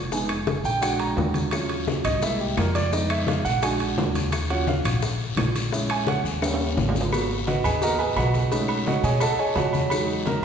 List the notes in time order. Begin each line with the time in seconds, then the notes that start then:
Already playing: F1
0.12 G#3 B3 D#4 G#5, high bongo, high conga, maracas
0.29 high bongo, high conga, high timbale, claves, maracas
0.47 high bongo, high conga, high timbale, low timbale, maracas
0.64 A#1 G5, maracas
0.81 G#3 D4 F#4 F#5, high bongo, high conga, high timbale, claves, maracas
0.99 A#5, high conga, high timbale, maracas
1.16 D#2, high bongo, low bongo, high conga, low timbale, maracas
1.34 high bongo, high conga, high timbale, maracas
1.51 F#3 C#4 F4, high bongo, high conga, high timbale, long guiro, claves, maracas
1.69 high bongo, high conga, high timbale, maracas
1.87 high bongo, high conga, low timbale, short guiro, maracas
2.04 C2 D#5, low conga, high timbale, short guiro, claves, maracas
2.22 G#3 A#3 E4 E5, high bongo, high conga, long guiro, maracas
2.40 G4, high conga, maracas
2.57 F2 A#4, high bongo, low bongo, high conga, high timbale, low timbale, short guiro, claves, maracas
2.75 D5, high bongo, high conga, high timbale, short guiro, maracas
2.92 G#3 B3 D#4 D#5, high bongo, high conga, long guiro, maracas
3.10 E5, high bongo, high conga, high timbale, claves, maracas
3.27 F5, high bongo, high conga, high timbale, low timbale, short guiro, maracas
3.45 A#1 F#5, short guiro, maracas
3.62 G#3 D4 F#4 G#5, high bongo, high conga, high timbale, long guiro, claves, maracas
3.80 high conga, high timbale, maracas
3.97 D#2, high bongo, low bongo, high conga, low timbale, short guiro, maracas
4.14 high bongo, high conga, high timbale, short guiro, maracas
4.32 high bongo, high conga, high timbale, long guiro, claves, maracas
4.50 F#3 C#4 F4 F#5, high bongo, high conga, high timbale, maracas
4.67 F5, high bongo, high conga, low timbale, short guiro, maracas
4.84 A#1, low conga, high timbale, short guiro, claves, maracas
5.02 high bongo, high conga, long guiro, maracas
5.20 high conga, maracas
5.37 A#1, high bongo, low bongo, high conga, high timbale, low timbale, short guiro, claves, maracas
5.55 high bongo, high timbale, short guiro, maracas
5.72 G#3 C#4 E4, high bongo, high conga, long guiro, maracas
5.90 G#5, high bongo, high conga, high timbale, claves, maracas
6.07 F#5, high bongo, high conga, high timbale, low timbale, short guiro, maracas
6.24 D#2, short guiro, maracas
6.42 G3 A#3 C#4, high bongo, high conga, high timbale, long guiro, claves, maracas
6.54 high timbale
6.61 high conga, maracas
6.77 G#1, high bongo, low bongo, high conga, short guiro, maracas
6.89 low timbale
6.95 high bongo, high conga, short guiro, maracas
7.01 low timbale
7.12 A#3 B3 F#4, cowbell, high conga, low agogo, long guiro, claves, maracas
7.31 high conga, maracas
7.47 F#4 B4 D#5 F#5, cowbell, high conga, low timbale, low agogo, short guiro, maracas
7.64 D#2 G#4 B4 D#5 G#5, low conga, low agogo, short guiro, claves, maracas
7.82 A#3 B3 F#4 A#4 D#5 F#5 A#5, cowbell, high conga, long guiro, maracas
7.99 G#4 B4 D#5 G#5, high conga, low agogo, maracas
8.16 B1 F#4 B4 D#5 F#5, cowbell, high conga, low timbale, low agogo, short guiro, claves, maracas
8.34 cowbell, high conga, short guiro, maracas
8.52 G#3 A3 C#4 D#4, cowbell, high conga, low agogo, long guiro, maracas
8.68 high conga, low agogo, claves, maracas
8.86 F#4 C#5 D#5 F#5, cowbell, high conga, low timbale, short guiro, maracas
9.03 B2 G#4 C#5 D#5 G#5, cowbell, short guiro, maracas
9.20 A4 D#5 F#5 A5, cowbell, high conga, low agogo, long guiro, claves, maracas
9.39 G#4 C#5 D#5 G#5, high conga, maracas
9.55 E2 F#4 C#5 D#5 F#5, cowbell, high conga, low timbale, low agogo, short guiro, maracas
9.73 high conga, low agogo, short guiro, maracas
9.90 F#3 G#3 D#4, cowbell, high conga, low agogo, long guiro, claves, maracas
10.09 high conga, maracas
10.26 A#4 A#5, cowbell, high conga, low timbale, low agogo, short guiro, maracas